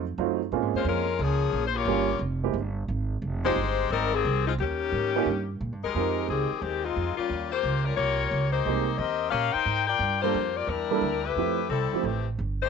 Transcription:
Already playing: upright bass F2
0.18 upright bass F#2, grand piano F#3 A3 C4 D#4 F4
0.52 upright bass A#2, grand piano G#3 A#3 C4 C#4 F4
0.62 upright bass G#2
0.74 upright bass F2, saxophone section G#3 C#4 F4 C5
0.84 upright bass F2, saxophone section G#3 C#4 F4
0.89 saxophone section A#4
1.19 upright bass C#2, saxophone section F3 A#3 C#4 G#4
1.52 upright bass A#1
1.67 saxophone section C5
1.76 saxophone section A#3 F4 G4 C#5
1.85 upright bass G1, grand piano G3 A#3 C#4 F4 G4
2.19 upright bass F1
2.44 grand piano G#3 A#3 C4 E4 G4
2.53 upright bass G1
2.88 upright bass G#1
3.22 upright bass F1
3.45 grand piano G#3 C4 D#4 F4 G4, saxophone section G#3 D#4 G4 C5
3.56 upright bass G1
3.90 upright bass G#1, saxophone section G3 C4 D#4 A#4
4.14 saxophone section D#3 C4 G4 G#4
4.25 upright bass C2
4.47 saxophone section G#3 C4 D#4 F4
4.58 upright bass D#2, saxophone section D#3 A#3 C#4 G4
4.92 upright bass G#2
5.16 grand piano A#3 C#4 D#4 F4 G4
5.26 upright bass G2
5.61 upright bass A#2
5.72 upright bass G2
5.84 upright bass D#2, saxophone section G#3 D#4 G4 A#4
5.95 upright bass F2, grand piano G#3 C4 D#4 F4 G4
6.28 upright bass C#2, saxophone section D#3 C4 G4 G#4
6.51 muted upright bass stroke
6.62 upright bass D#2, saxophone section D#3 G#3 C4 G4
6.84 saxophone section G#3 C4 D#4 F4
6.96 upright bass F2
7.17 saxophone section G3 A#3 C#4 F4, muted upright bass stroke
7.30 upright bass D#2
7.51 saxophone section A#3 F4 G4 C5
7.63 upright bass C#2
7.85 saxophone section G3 C#4 F4 A#4
7.96 upright bass C2, saxophone section A#3 F4 G4 C#5
8.31 upright bass C#2
8.52 saxophone section A#3 D#4 G4 C5
8.65 upright bass C2, grand piano G#3 A#3 C4 D#4 G4
8.98 upright bass D#2, saxophone section C4 G4 A#4 D#5
9.30 upright bass A#2, saxophone section C#4 G4 A#4 F5
9.53 saxophone section D#4 A#4 C5 G5, muted upright bass stroke
9.65 upright bass G#2
9.87 saxophone section F4 A#4 D5 G5
9.99 upright bass G2
10.21 grand piano G3 A#3 D4 F4 A4, saxophone section A#3 F4 G4 C5
10.34 upright bass F2
10.55 saxophone section A#3 F4 G4 D5
10.67 upright bass E2, saxophone section G3 D4 E4 A#4
10.91 grand piano G3 A#3 D4 E4 A4
11.01 upright bass D2
11.24 saxophone section A3 E4 G4 B4
11.36 upright bass F2, grand piano F3 A3 C4 E4 G4
11.69 upright bass C2, saxophone section G3 C4 E4 A4
11.93 grand piano F3 A3 C4 E4 G4, muted upright bass stroke
12.03 upright bass A1, saxophone section E3 A3 C4 G4
12.39 upright bass G1
12.62 saxophone section A#3 E4 G#4 C#5

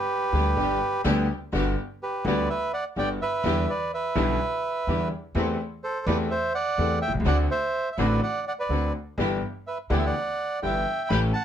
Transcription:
Already playing: bandoneon G4 B4
0.33 upright bass D2, grand piano D2 D3 G3 B3 G4, string section B3 D4 G4
0.57 upright bass G1, grand piano G1 G2 D3 G3 B3 G4, string section B3 D4 G4
1.04 upright bass D2, grand piano D2 D3 G3 B3 G4, string section B3 D4 G4
1.53 grand piano G1 G2 D3 G3 B3 F#4, upright bass G1, string section B3 F#4 G4
2.03 bandoneon G4 B4
2.24 grand piano D2 D3 G3 B3 F#4, upright bass D2, string section B3 F#4 G4, bandoneon B4 D5
2.50 bandoneon B4 E5
2.73 bandoneon D5 F#5
2.96 upright bass G1, grand piano G1 G2 D3 G3 B3 F#4, string section B3 F#4 G4, bandoneon D5 G5
3.22 bandoneon B4 E5
3.44 upright bass E2, grand piano E2 D3 E3 G3 B3 E4, string section D4 E4 G4
3.69 bandoneon B4 D5
3.94 bandoneon B4 E5
4.15 grand piano B1 B2 D3 G3 B3 E4, upright bass B1, string section D4 E4 G4
4.87 upright bass E2, grand piano E2 D3 E3 G3 B3 E4, string section D4 E4 G4
5.35 upright bass E2, grand piano E2 E3 A3 C4 G4, string section C4 E4 A4
5.84 bandoneon A4 C5
6.06 upright bass E2, grand piano E2 E3 A3 C4 G4, string section C4 E4 A4, bandoneon B4 D5
6.31 bandoneon C5 E5
6.55 bandoneon D5 F#5
6.78 upright bass E2, grand piano E2 E3 A3 C4 G4, string section C4 E4 A4
7.02 bandoneon E5 G5
7.08 grand piano B1, upright bass B1
7.14 grand piano C2, upright bass C2
7.20 upright bass C#2, grand piano C#2
7.25 upright bass D2, grand piano D2 D3 A3 C4 F#4, string section C4 D4 F#4, bandoneon D5 F#5
7.51 bandoneon C5 E5
7.92 bandoneon E5
7.98 upright bass A1, grand piano A1 A2 D3 A3 C4 F#4, string section C4 D4 F#4, bandoneon B4 D5
8.23 bandoneon D5 F#5
8.47 bandoneon D5 F#5
8.59 bandoneon B4 D5
8.69 upright bass D2, grand piano D2 D3 A3 C4 F#4, string section C4 D4 F#4
9.18 upright bass G1, grand piano G1 G2 E3 B3 D4 G4, string section B3 E4 G4
9.67 bandoneon B4 E5
9.90 grand piano D2 D3 E3 B3 D4 G4, upright bass D2, string section B3 E4 G4, bandoneon D5 F#5
9.99 bandoneon E5
10.05 bandoneon D5 F#5
10.62 upright bass G1, grand piano G1 G2 E3 B3 D4 G4, string section B3 E4 G4, bandoneon E5 G5
11.09 grand piano A1 A2 E3 A3 C#4 G4, upright bass A1, string section A3 C#4 G4, bandoneon G5 B5
11.33 bandoneon F#5 A5

